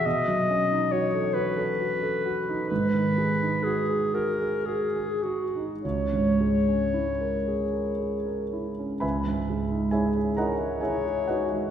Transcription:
<<
  \new Staff \with { instrumentName = "Clarinet" } { \time 6/8 \key cis \dorian \tempo 4. = 43 dis''4 cis''8 b'4. | b'4 gis'8 ais'8 gis'8 fis'8 | cis''2~ cis''8 r8 | r4. cis''4. | }
  \new Staff \with { instrumentName = "Grand piano" } { \time 6/8 \key cis \dorian << { r2. | r2. | r2. | <b' e'' gis'' b''>4 <gis' cis'' e'' gis''>8 <ais' dis'' fis'' ais''>8 <gis' cis'' e'' gis''>8 <fis' b' dis'' fis''>8 | } \\ { b,16 fis16 cis'16 dis'16 fis'16 a'16 fis'16 a'16 fis'16 a'16 fis'16 dis'16 | gis,16 dis16 gis16 dis'16 fis'16 gis'16 fis'16 gis'16 fis'16 gis'16 fis'16 dis'16 | cis,16 gis,16 gis16 cis'16 e'16 ais'16 gis'16 ais'16 gis'16 ais'16 e'16 cis'16 | cis,16 gis,16 gis16 dis'16 e'16 gis'16 e'16 gis'16 e'16 gis'16 dis'16 gis16 | } >> }
>>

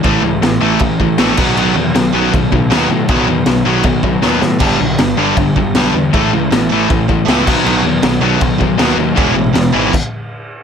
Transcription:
<<
  \new Staff \with { instrumentName = "Distorted electric guitar" } { \clef bass \time 4/4 \key b \mixolydian \tempo 4 = 158 <a, e a>8 <a, e>8 <a, e>8 <a, e a>8 <a, e>8 <a, e>8 <a, e a>8 <b, dis fis>8 | <b, dis fis>8 <b, dis>8 <b, dis>8 <b, dis fis>8 <b, dis>8 <b, dis>8 <b, dis fis>8 <b, dis>8 | <b, dis fis>8 <b, dis>8 <b, dis>8 <b, dis fis>8 <b, dis>8 <b, dis>8 <b, dis fis>8 <b, dis>8 | <g, d g>8 <g, d>8 <g, d>8 <g, d g>8 <g, d>8 <g, d>8 <g, d g>8 <g, d>8 |
<a, e a>8 <a, e>8 <a, e>8 <a, e a>8 <a, e>8 <a, e>8 <a, e a>8 <b, dis fis>8 | <b, dis fis>8 <b, dis>8 <b, dis>8 <b, dis fis>8 <b, dis>8 <b, dis>8 <b, dis fis>8 <b, dis>8 | <e gis b>8 <e gis>8 <e gis>8 <e gis b>8 r2 | }
  \new Staff \with { instrumentName = "Distorted electric guitar" } { \clef bass \time 4/4 \key b \mixolydian <a, e a>8 <a, e>8 <a, e>8 <a, e a>8 <a, e>8 <a, e>8 <a, e a>8 <b, fis b>8 | <b, fis b>8 <b, fis>8 <b, fis>8 <b, fis b>8 <b, fis>8 <b, fis>8 <b, fis b>8 <b, fis>8 | <b, fis b>8 <b, fis>8 <b, fis>8 <b, fis b>8 <b, fis>8 <b, fis>8 <b, fis b>8 <b, fis>8 | <g, d g>8 <g, d>8 <g, d>8 <g, d g>8 <g, d>8 <g, d>8 <g, d g>8 <g, d>8 |
<a, e a>8 <a, e>8 <a, e>8 <a, e a>8 <a, e>8 <a, e>8 <a, e a>8 <b, fis b>8 | <b, fis b>8 <b, fis>8 <b, fis>8 <b, fis b>8 <b, fis>8 <b, fis>8 <b, fis b>8 <b, fis>8 | <e, b, e>8 <e, b,>8 <e, b,>8 <e, b, e>8 r2 | }
  \new Staff \with { instrumentName = "Picked electric bass" } { \clef bass \time 4/4 \key b \mixolydian a,,8 cis,8 a,,8 a,,8 a,,8 a,,8 bes,,8 b,,8 | b,,8 e,8 b,,8 b,,8 b,,8 b,,8 dis,8 a,8 | b,,8 e,8 b,,8 b,,8 b,,8 b,,8 dis,8 a,8 | g,,8 b,,8 g,,8 g,,8 g,,8 g,,8 b,,8 e,8 |
a,,8 cis,8 a,,8 a,,8 a,,8 a,,8 cis,8 b,,8 | b,,8 e,8 b,,8 b,,8 b,,8 b,,8 dis,8 dis,8 | e,,8 a,,8 e,,8 gis,,8 r2 | }
  \new DrumStaff \with { instrumentName = "Drums" } \drummode { \time 4/4 <cymc bd>4 <cymc sn>4 <cymc bd>8 bd8 <cymc sn>8 <cymc bd>8 | cymc4 <cymc sn>4 <cymc bd>8 bd8 <cymc sn>4 | <cymc bd>4 <cymc sn>4 <cymc bd>8 bd8 sn8 sn8 | <cymc bd>4 <cymc sn>4 <cymc bd>8 bd8 <cymc sn>4 |
<cymc bd>4 <cymc sn>4 <cymc bd>8 bd8 <cymc sn>8 <cymc bd>8 | cymc4 <cymc sn>4 <cymc bd>8 bd8 <cymc sn>4 | <cymc bd>4 <cymc sn>4 <cymc bd>4 r4 | }
>>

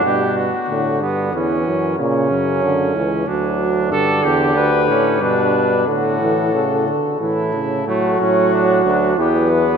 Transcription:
<<
  \new Staff \with { instrumentName = "Cornet" } { \time 3/4 \key g \lydian \tempo 4 = 92 r2. | r2. | \key d \major d''4 b'4 b'4 | a'2 a'4 |
fis'2 g'8 b'8 | }
  \new Staff \with { instrumentName = "Trumpet" } { \time 3/4 \key g \lydian g'8 fis'4 b8 cis'4 | cis'2 d'4 | \key d \major a'8 g'4 cis'8 d'4 | fis'4. r8 e'4 |
a8 cis'8 d'8 d'8 b4 | }
  \new Staff \with { instrumentName = "Euphonium" } { \clef bass \time 3/4 \key g \lydian b,4 d4 e4 | cis4 d8 e8 fis4 | \key d \major d2 b,4 | d8 e8 cis8 d8 e8 cis8 |
fis2 e4 | }
  \new Staff \with { instrumentName = "Bass trombone" } { \clef bass \time 3/4 \key g \lydian g,4 a,8 g,8 e,8 fis,8 | ais,8 fis,4 cis,8 d,4 | \key d \major g,8 e,8 d,8 a,8 g,4 | a,4. r8 a,4 |
a,8 a,4 d,8 e,4 | }
>>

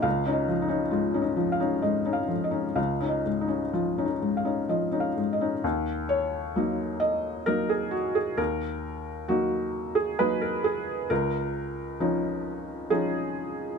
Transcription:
\new Staff \with { instrumentName = "Felt piano" } { \time 3/4 \key ees \minor \tempo 4 = 66 << { \tuplet 3/2 { f''8 ees''8 ees'8 f'8 ees'8 f''8 ees''8 f''8 ees''8 } | \tuplet 3/2 { f''8 ees''8 ees'8 f'8 ees'8 f''8 ees''8 f''8 ees''8 } | r8 des''4 ees''8 bes'16 aes'16 ges'16 aes'16 | bes'4 ges'8. aes'16 ces''16 bes'16 aes'8 |
bes'2 aes'4 | } \\ { des,16 <des' ees'>16 f16 <des' ees'>16 aes,16 <des' ees'>16 f16 <des' ees'>16 aes,16 <des' ees'>16 f16 <des' ees'>16 | des,16 <des' ees'>16 aes,16 <des' ees'>16 f16 <des' ees'>16 aes,16 <des' ees'>16 f16 <des' ees'>16 aes,16 <des' ees'>16 | ees,4 <ges bes ees'>4 <ges bes ees'>4 | ees,4 <ges bes ees'>4 <ges bes ees'>4 |
des,4 <f des' ees'>4 <f des' ees'>4 | } >> }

